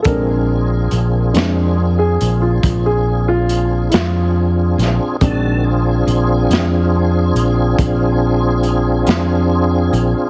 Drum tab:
HH |x-xx-xx-xx-x|x-xx-xx-xx-x|
SD |---o-----o-o|---o-----o--|
BD |o-----o-----|o-----o-----|